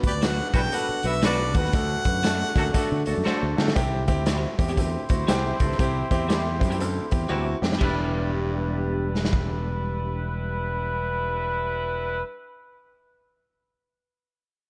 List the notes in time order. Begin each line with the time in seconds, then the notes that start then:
Already playing: B2
0.03 D2 B3 D4 F#4 B4, kick, closed hi-hat
0.07 G4 B4 D5
0.22 F#3 B3 D4 F#4, snare, closed hi-hat
0.26 F#5
0.49 F#5
0.54 B1 E2 B3 D4 F#4 B4 G5, kick, closed hi-hat
0.72 B3 D4 F#4 A4 B4 F#5, closed hi-hat
0.89 muted fingered electric bass stroke
1.03 B1 B3 D4 F#4 B4 E5, closed hi-hat
1.13 closed hi-hat
1.22 F#3 B3 D4 F#4 B4 D5, snare, closed hi-hat
1.54 D2 D#2 B3 D4 F#4 B4 F#5, kick, closed hi-hat
1.64 snare
1.73 D2 A3 D4 F#4 A4, kick, closed hi-hat
2.05 F#2 A3 D4 F#4 B4, kick, closed hi-hat
2.23 F#3 A3 D4 F#4 A4, snare, closed hi-hat
2.55 D2 F#2 A3 D4 F#4 A4, kick, closed hi-hat
2.74 A3 D4 F#4 A4, kick, closed hi-hat
2.92 D3
3.06 D2 A3 D4 F#4 A4, closed hi-hat
3.17 F#2
3.24 F#3 A3 D4 F#4 A4 C5, muted fingered electric bass stroke, snare
3.43 D2
3.57 E2 D3 A3 D4 F#4 A4, snare
3.68 snare
3.75 C2 C3 C4 E4 G4, kick, closed hi-hat
4.08 D2 C4 E4 G4, kick, closed hi-hat
4.26 G3 C4 E4 F#4 G4, snare, closed hi-hat
4.58 E2 C4 E4 G4, kick, closed hi-hat
4.68 G3 C4 E4 G4, closed hi-hat
4.77 D2 C4 E4 G4 C5, kick, closed hi-hat
5.09 D2 C4 E4 F#4, kick, closed hi-hat
5.27 C2 E2 G3 C4 E4 G4, snare, closed hi-hat
5.60 C#2 G2 C4 E4 A4, kick, closed hi-hat
5.72 snare
5.79 C2 C3 C4 E4 G4, kick, closed hi-hat
6.11 E2 C4 E4 G4, kick, closed hi-hat
6.28 G3 C4 E4 G4, snare, closed hi-hat
6.59 F#2 C4 E4 G4, kick, closed hi-hat
6.70 G3 C4 E4 G4, closed hi-hat
6.79 D2 C4 E4 A4, closed hi-hat
7.11 E2 C4 E4 G4, kick, closed hi-hat
7.29 D2 E2 G3 C4 E4 F#4 G4
7.62 F2 G2 C4 E4 G4, snare
7.72 snare
7.79 E1 G2 G3 B3 D4 E4 B4, kick, crash
7.83 G4
9.15 snare
9.25 snare
9.33 kick